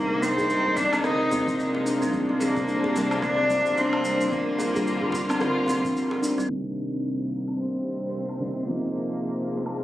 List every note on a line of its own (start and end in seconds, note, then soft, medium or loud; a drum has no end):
0.00 0.31 C2 medium
0.00 2.09 C3 medium
0.00 6.46 F3 medium
0.00 4.28 G#3 medium
0.00 0.24 A#3 loud
0.00 6.46 A#3 medium
0.00 2.11 D#4 medium
0.00 0.10 A#4 medium
0.22 0.38 A#3 medium
0.22 0.78 C4 loud
0.22 djembe tone medium
0.22 shaker medium
0.38 0.72 C2 loud
0.38 djembe bass medium
0.38 shaker soft
0.50 shaker soft
0.66 djembe bass medium
0.77 0.98 C2 medium
0.77 1.03 D4 loud
0.77 kick medium
0.77 djembe slap medium
0.77 shaker medium
0.93 1.03 C4 loud
0.93 low woodblock medium
0.93 shaker soft
1.04 1.16 G1 medium
1.04 1.55 D#4 medium
1.04 1.20 A#4 medium
1.04 cross-stick medium
1.04 djembe slap soft
1.04 djembe tone medium
1.04 shaker soft
1.31 1.43 D#2 loud
1.31 1.85 C4 medium
1.31 djembe slap soft
1.31 djembe tone medium
1.31 shaker medium
1.48 1.56 G1 medium
1.48 kick medium
1.48 shaker soft
1.59 shaker soft
1.74 djembe slap medium
1.86 2.00 D4 medium
1.86 shaker medium
2.02 2.50 C2 medium
2.02 2.13 C4 medium
2.02 djembe slap soft
2.02 shaker soft
2.13 4.29 C3 medium
2.13 4.29 D4 medium
2.13 kick loud
2.13 shaker soft
2.29 2.40 C4 medium
2.40 3.24 A#3 medium
2.40 djembe tone medium
2.40 shaker medium
2.56 2.90 C2 loud
2.56 2.67 A#3 medium
2.56 kick medium
2.56 djembe bass medium
2.56 shaker soft
2.68 2.82 D4 medium
2.68 shaker soft
2.84 2.95 G4 medium
2.84 djembe bass medium
2.96 3.16 C2 medium
2.96 3.05 G3 medium
2.96 djembe slap medium
2.96 shaker medium
3.11 low woodblock medium
3.11 shaker soft
3.22 3.34 G1 medium
3.22 3.79 D4 loud
3.22 kick loud
3.22 cross-stick medium
3.22 shaker soft
3.39 3.49 C4 medium
3.50 3.61 C2 loud
3.50 kick medium
3.50 djembe slap soft
3.50 djembe tone medium
3.50 shaker medium
3.66 3.74 G1 medium
3.66 shaker soft
3.77 4.34 C4 loud
3.77 4.03 D4 medium
3.77 shaker soft
3.93 low woodblock medium
4.05 4.14 G3 medium
4.05 djembe tone soft
4.05 shaker medium
4.20 4.68 C2 loud
4.20 4.31 D4 medium
4.20 shaker soft
4.32 6.48 D3 medium
4.32 6.48 G3 medium
4.32 5.41 A#3 medium
4.32 6.48 F4 medium
4.32 4.47 A#4 medium
4.32 kick loud
4.32 shaker soft
4.59 4.74 A#3 medium
4.59 djembe tone medium
4.59 shaker medium
4.75 5.08 C2 loud
4.75 djembe bass medium
4.75 shaker soft
4.87 shaker soft
5.01 djembe bass medium
5.12 5.34 C2 medium
5.12 kick medium
5.12 djembe slap medium
5.12 shaker medium
5.29 5.40 C4 loud
5.29 low woodblock medium
5.29 shaker soft
5.40 5.52 G1 medium
5.40 5.56 A#4 medium
5.40 cross-stick medium
5.40 djembe slap soft
5.40 djembe tone medium
5.40 shaker soft
5.66 5.80 C2 loud
5.66 6.21 C4 medium
5.66 djembe slap medium
5.66 djembe tone medium
5.66 shaker medium
5.84 5.92 G1 medium
5.84 kick medium
5.84 shaker soft
5.96 shaker soft
6.11 djembe slap medium
6.23 6.37 D4 medium
6.23 shaker medium
6.38 6.47 C2 medium
6.38 6.50 C4 medium
6.38 djembe slap soft
6.38 shaker soft
6.48 8.37 C3 medium
6.48 9.84 C3 medium
6.48 8.38 D#3 medium
6.48 8.66 D#3 medium
6.48 8.38 G3 medium
6.48 8.66 G3 medium
6.48 9.84 A#3 medium
6.48 8.39 A#3 medium
6.48 shaker soft
6.52 8.39 D4 medium
6.78 shaker medium
7.05 shaker soft
7.32 shaker medium
7.48 low woodblock medium
7.48 shaker soft
7.58 8.69 C4 loud
7.58 shaker soft
7.87 shaker medium
8.02 shaker soft
8.14 shaker soft
8.29 low woodblock medium
8.40 8.64 C3 medium
8.40 8.65 D#3 medium
8.40 8.65 G3 medium
8.40 8.65 A#3 medium
8.40 8.66 D#4 medium
8.40 shaker medium
8.57 shaker soft
8.65 9.84 C3 medium
8.65 9.84 F3 medium
8.65 9.84 G#3 medium
8.65 9.49 A#3 medium
8.65 9.84 A#3 medium
8.65 9.84 D#4 medium
8.96 shaker medium
9.12 shaker soft
9.23 shaker soft
9.50 9.59 A#3 medium
9.50 shaker medium
9.57 9.67 C4 medium
9.65 9.78 A#3 medium
9.65 low woodblock medium
9.65 shaker soft
9.77 9.84 G#3 medium
9.77 shaker soft